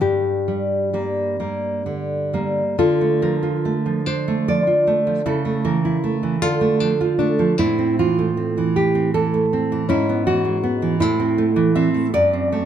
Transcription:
0.01 2.74 G2 soft
0.01 2.30 G4 soft
0.48 0.92 G3 soft
0.93 1.36 G3 soft
0.93 1.36 A#3 soft
1.40 1.82 G3 soft
1.40 1.82 A#3 soft
1.86 2.61 D3 soft
2.34 2.75 G3 soft
2.34 2.75 A#3 soft
2.79 5.23 D3 soft
2.79 4.06 F4 soft
2.79 3.20 A4 medium
3.01 3.35 A3 soft
3.22 3.56 F3 soft
3.22 4.04 A#4 soft
3.43 3.77 F4 soft
3.65 3.99 A3 soft
3.86 4.47 F3 soft
4.06 5.25 D4 soft
4.06 4.47 C5 soft
4.28 4.60 A3 soft
4.48 4.80 F3 soft
4.48 5.24 D5 medium
4.67 4.99 F4 soft
4.87 5.19 A3 soft
5.07 5.25 F3 soft
5.26 6.39 C#3 soft
5.26 6.42 E4 soft
5.26 5.64 A4 medium
5.45 5.77 A3 soft
5.65 5.96 E3 soft
5.65 6.39 A#4 soft
5.85 6.16 E4 soft
6.04 6.35 A3 soft
6.23 6.42 E3 soft
6.42 7.55 D3 soft
6.42 6.80 F4 soft
6.42 7.55 A4 medium
6.61 6.92 A3 soft
6.80 7.12 F3 soft
6.80 7.18 D4 soft
7.01 7.32 F4 soft
7.19 7.51 A3 soft
7.19 7.58 D4 soft
7.39 7.59 F3 soft
7.58 9.86 A2 soft
7.58 9.88 C4 soft
7.58 7.96 E4 medium
7.79 8.10 C4 soft
7.99 8.30 E3 soft
7.99 8.73 F4 medium
8.19 8.49 A3 soft
8.37 8.68 C4 soft
8.58 9.13 E3 soft
8.76 9.13 G4 soft
8.95 9.25 C4 soft
9.14 9.45 E3 soft
9.14 9.87 A4 medium
9.34 9.64 A3 soft
9.53 9.83 C4 soft
9.72 9.90 E3 soft
9.89 10.98 G#2 soft
9.89 11.02 C#4 soft
9.89 10.25 E4 medium
10.09 10.39 B3 soft
10.27 10.57 E3 soft
10.27 10.99 F#4 medium
10.45 10.75 G#3 soft
10.63 10.94 B3 soft
10.82 11.01 E3 soft
11.00 12.10 A2 soft
11.00 12.65 C4 medium
11.00 11.73 E4 medium
11.20 11.50 C4 soft
11.38 11.68 A3 soft
11.56 11.87 E3 soft
11.75 12.07 C4 soft
11.75 12.13 E5 medium
11.94 12.14 A3 soft
12.14 12.65 F#2 medium
12.14 12.65 D5 medium
12.33 12.64 C4 soft
12.52 12.65 A3 soft

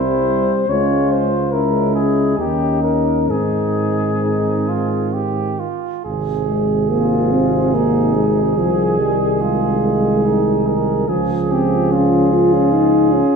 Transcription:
0.00 0.52 C2 medium
0.00 0.68 G3 soft
0.00 0.67 C4 soft
0.00 0.53 E4 soft
0.00 0.71 C5 medium
0.69 2.34 C#2 soft
0.69 1.36 G#3 soft
0.69 1.36 C#4 soft
0.69 1.55 F4 soft
0.69 1.13 C#5 soft
1.12 1.53 C5 soft
1.52 2.40 G#3 soft
1.52 2.37 C#4 soft
1.52 2.40 E4 soft
1.52 1.94 A#4 soft
1.95 2.37 G#4 soft
2.38 3.31 D#2 soft
2.38 3.29 D#3 soft
2.38 3.31 C#4 soft
2.38 3.28 D#4 soft
2.38 2.82 G4 soft
2.82 3.32 A#4 soft
3.29 5.72 G#2 soft
3.29 5.68 D#3 soft
3.29 5.72 C4 soft
3.29 4.11 D#4 soft
3.29 5.14 G#4 soft
4.23 4.70 D#4 soft
4.69 5.15 F4 soft
5.14 5.61 G4 soft
5.60 6.04 F4 soft
6.05 8.53 G#1 soft
6.05 8.53 C3 soft
6.05 11.04 G#4 soft
6.48 6.91 G#3 soft
6.90 7.33 A#3 medium
6.90 7.76 F4 soft
7.32 7.76 C4 medium
7.74 8.16 A#3 medium
7.74 8.58 D#4 soft
8.16 8.60 G#3 soft
8.57 11.05 C2 soft
8.57 11.10 D#3 soft
8.57 9.01 F3 medium
8.57 9.43 G#4 soft
9.00 9.41 G3 soft
9.41 11.06 G#3 soft
9.41 10.27 F4 soft
10.25 10.69 D#4 soft
10.67 11.10 A#4 soft
11.08 13.22 C#2 soft
11.08 13.25 F3 soft
11.08 11.53 G#4 soft
11.08 13.36 G#4 soft
11.50 11.93 C4 medium
11.50 11.94 G4 soft
11.91 12.34 C#4 soft
11.91 13.36 F4 soft
12.33 12.55 F4 medium
12.53 12.74 C#4 medium
12.73 13.14 D#4 medium
13.12 13.36 C#4 medium

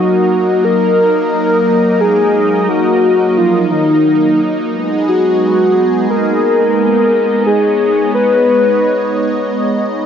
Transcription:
0.00 4.70 F#3 medium
0.00 4.70 A#3 medium
0.00 10.06 D#4 medium
0.00 0.66 F#4 loud
0.00 4.70 A#4 medium
0.00 4.70 D#5 loud
0.65 2.02 A#4 loud
2.01 2.71 G#4 loud
2.69 3.37 F#4 loud
3.37 3.73 F4 loud
3.71 4.40 D#4 medium
4.74 10.06 G#3 medium
4.74 10.06 B3 medium
4.74 7.44 G#4 medium
4.74 10.06 D#5 medium
5.08 6.06 F#4 loud
6.10 7.43 A#4 loud
7.47 8.11 G#4 loud
7.47 10.06 C#5 medium
8.15 9.47 B4 loud

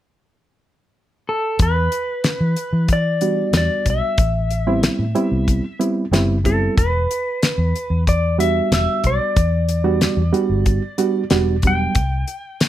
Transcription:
1.29 1.62 A4 medium
1.59 1.87 E2 medium
1.59 2.92 B4 medium
1.59 kick loud
1.59 closed hi-hat medium
1.92 closed hi-hat medium
2.24 snare loud
2.24 closed hi-hat medium
2.41 2.54 E3 medium
2.56 closed hi-hat medium
2.73 3.42 E3 medium
2.88 kick medium
2.88 closed hi-hat medium
2.93 3.56 D5 medium
3.21 4.17 G3 medium
3.21 4.17 B3 medium
3.21 4.17 D4 medium
3.21 4.17 F#4 medium
3.21 closed hi-hat medium
3.53 3.67 E2 medium
3.53 snare loud
3.53 closed hi-hat medium
3.57 3.89 D5 medium
3.85 4.00 B1 medium
3.85 kick medium
3.85 closed hi-hat medium
3.90 5.78 E5 medium
4.18 4.87 A1 loud
4.18 kick loud
4.18 closed hi-hat medium
4.51 closed hi-hat medium
4.67 5.03 G3 medium
4.67 5.03 B3 medium
4.67 5.03 C4 medium
4.67 5.03 E4 loud
4.83 snare loud
4.83 closed hi-hat medium
4.99 5.13 A2 medium
5.15 5.63 G3 medium
5.15 5.63 B3 medium
5.15 5.63 C4 medium
5.15 5.63 E4 loud
5.15 closed hi-hat soft
5.32 5.59 C2 medium
5.48 kick medium
5.48 closed hi-hat medium
5.79 6.04 G3 medium
5.79 6.04 B3 medium
5.79 6.04 C4 medium
5.79 6.04 E4 medium
5.79 closed hi-hat medium
6.11 6.67 F#1 medium
6.11 6.37 G3 loud
6.11 6.37 B3 medium
6.11 6.37 C4 medium
6.11 6.37 E4 loud
6.11 snare loud
6.11 closed hi-hat medium
6.44 6.77 G3 medium
6.44 6.77 B3 medium
6.44 6.77 C4 medium
6.44 6.77 E4 medium
6.44 6.78 A4 medium
6.44 kick medium
6.44 closed hi-hat medium
6.77 7.05 E1 medium
6.77 8.03 B4 medium
6.77 kick loud
6.77 closed hi-hat medium
7.11 closed hi-hat medium
7.43 snare loud
7.43 closed hi-hat medium
7.58 7.72 E2 medium
7.76 closed hi-hat soft
7.90 8.60 E2 medium
8.07 8.40 D5 medium
8.07 kick medium
8.07 closed hi-hat medium
8.38 9.34 G3 medium
8.38 9.35 B3 medium
8.38 9.35 D4 medium
8.38 9.35 F#4 medium
8.38 8.73 E5 medium
8.38 closed hi-hat medium
8.71 8.86 E1 medium
8.71 9.06 E5 medium
8.71 snare loud
8.71 closed hi-hat medium
9.04 9.18 B1 loud
9.04 11.72 D5 medium
9.04 kick medium
9.04 closed hi-hat medium
9.36 10.06 E2 medium
9.36 kick medium
9.36 closed hi-hat medium
9.69 closed hi-hat medium
9.84 10.21 G3 medium
9.84 10.21 B3 medium
9.84 10.21 D4 medium
9.84 10.21 F#4 medium
10.01 snare loud
10.01 closed hi-hat medium
10.17 10.31 E2 medium
10.33 10.81 G3 medium
10.33 10.81 B3 medium
10.33 10.81 D4 medium
10.33 10.81 F#4 loud
10.33 closed hi-hat soft
10.49 10.77 G1 medium
10.66 kick medium
10.66 closed hi-hat medium
10.98 11.22 G3 medium
10.98 11.22 B3 medium
10.98 11.23 D4 medium
10.98 11.23 F#4 loud
10.98 closed hi-hat medium
11.30 11.86 E1 medium
11.30 11.55 G3 medium
11.30 11.55 B3 medium
11.30 11.55 D4 medium
11.30 11.55 F#4 loud
11.30 snare loud
11.30 closed hi-hat medium
11.62 11.96 F#3 medium
11.62 11.97 G3 medium
11.62 11.96 B3 medium
11.62 11.97 D4 medium
11.62 kick medium
11.62 closed hi-hat medium
11.67 12.69 G5 medium
11.95 12.23 C2 medium
11.95 kick loud
11.95 closed hi-hat medium
12.27 closed hi-hat soft
12.61 snare loud
12.61 closed hi-hat medium

